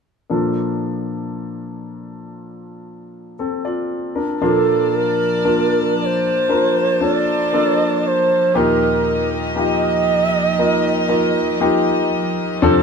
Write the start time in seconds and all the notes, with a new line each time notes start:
0.30 A#2 F3 A#3 D4 F4 A4
3.39 C4 A4
3.65 F4 D5
4.15 D4 A#4
4.41 A#2 F3 A#3 D4 F4 A4 D5 A5
4.95 A#4
5.45 A#3 D4 F4 A#4
6.01 D5
6.06 C5
6.49 A#3 D4 F4 A#4 C5
7.01 A#3 D4 F4 A4 C#5
7.14 D5
7.53 A#3 D4 F4 A4
8.07 C5
8.54 D#2 A#2 A#3 D#4 F4 G4 A#4 D#5
9.55 A#3 D#4 F4 G4 F5
9.62 D#5
10.59 A#3 D#4 F4 A#4
11.08 A#3 D#4 F4 A#4
11.60 A#3 D#4 F4 G4
12.62 F2 C3 C4 D4 F4 A4 C5 A5